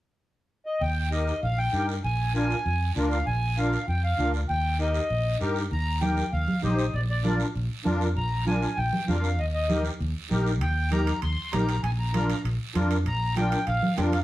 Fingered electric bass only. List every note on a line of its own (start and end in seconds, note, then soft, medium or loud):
0.81 1.30 D#2 medium
1.43 1.67 A#1 medium
1.73 1.98 G2 medium
2.04 2.53 A#1 medium
2.65 2.90 F2 medium
2.96 3.20 D2 medium
3.27 3.76 A#1 medium
3.88 4.12 F2 medium
4.18 4.43 D2 medium
4.49 4.98 D#2 medium
5.10 5.35 A#1 medium
5.41 5.65 G2 medium
5.71 6.20 D#2 medium
6.33 6.45 D#2 medium
6.63 6.88 A#1 medium
6.94 7.43 A#1 medium
7.55 7.67 A#1 medium
7.86 8.17 F2 medium
8.16 8.65 A#1 medium
8.77 8.90 A#1 medium
9.08 9.39 F2 medium
9.39 9.88 D#2 medium
10.00 10.12 D#2 medium
10.31 10.61 A#1 medium
10.61 11.10 D#2 medium
11.22 11.35 D#2 medium
11.53 11.78 A#1 medium
11.83 12.32 A#1 loud
12.44 12.57 A#1 medium
12.75 13.07 F2 medium
13.06 13.55 A#1 medium
13.67 13.79 A#1 medium
13.98 14.24 F2 medium